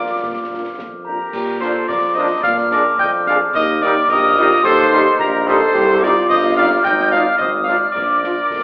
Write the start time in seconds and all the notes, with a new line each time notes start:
Already playing: F2 A#3 D4 F4 D5 D6
0.23 A#2, concert bass drum, snare
0.53 A#3 D4 F4
0.79 F2, concert bass drum, snare
1.05 A#3 D4 F4 G4 A#4 A#5
1.33 A#2 G4, concert bass drum, crash
1.60 A#3 D4 F4 A4 C5 C6, snare
1.87 F2 A#4 D5 D6, concert bass drum, snare
2.14 A#3 D4 F4 C5 D#5 D#6
2.41 A#2 D4 D5 F5 F6, concert bass drum, snare
2.45 F6
2.58 snare
2.71 G#3 A#3 D4 G#4 A#4 D5 D6, snare
2.97 F2 D4 D#5 G5 G6, concert bass drum
3.26 G#3 A#3 D4 G#4 D5 F5 F6, snare
3.53 D#2 D#4 A#4 D#5 D#6, concert bass drum, crash
3.81 G3 A#3 D#4 G4 A#4 D5 D6, snare
4.08 A#1 G4 A#4 D#5 D#6, concert bass drum, snare
4.36 G3 A#3 D#4 F4 G4
4.63 D#2 G4 A4 C5 C6, concert bass drum, snare
4.79 snare
4.91 G3 A#3 D#4 G4, snare
5.18 A#1 G4 A#4 A#5, concert bass drum
5.46 G3 A#3 D#4 G4 A4 C5 C6, snare
5.74 C2 G4, concert bass drum, crash
6.00 G3 C4 D#4 F4 G4 A#4 D5 D6, snare
6.29 G1 C5 D#5 D#6, concert bass drum, snare
6.56 G3 C4 D#4 G4 D5 F5 F6
6.83 G#1 D#4 D#5 G5 G6, concert bass drum, snare
7.00 snare
7.10 F3 C4 D#4 F4 D5 F5 F6, snare
7.38 G#1 C4 C5 D#5 D#6, concert bass drum
7.64 F3 C4 D#4 F4 D5 F5 F6
7.68 D#4 F6, snare
7.92 A#1 D4 A#4 D5 D6
7.96 D6, concert bass drum, crash
8.23 F3 A#3 D4 F4, snare
8.50 F2, concert bass drum, snare